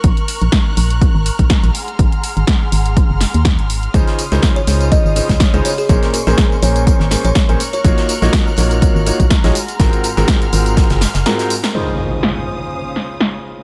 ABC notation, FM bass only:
X:1
M:4/4
L:1/16
Q:"Swing 16ths" 1/4=123
K:Db
V:1 name="FM bass" clef=bass
B,,, z2 B,,, z2 B,,,2 z A,,, z B,,, z B,,, z2 | A,,, z2 A,,, z2 A,,,2 z G,,, z E,,2 A,,,2 z | D,, z2 D,, z2 D,,2 z A,,, z D,, z D,, z2 | B,,, z2 B,,, z2 B,,,2 z A,,, z B,,, z B,,, z2 |
B,,, z2 B,,, z2 B,,,2 z A,,, z B,,, z B,,, z2 | A,,, z2 A,,, z2 A,,,2 z G,,, z G,,, z4 | z16 |]